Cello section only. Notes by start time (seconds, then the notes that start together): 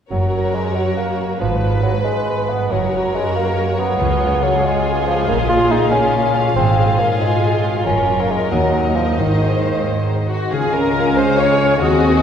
0.11 F#2
1.42 G#2
2.72 F#2
4.00 C#2
5.29 A#2
6.57 G#2
7.87 F#2
8.52 D#2
9.19 G#2
10.52 C#3
11.82 D#3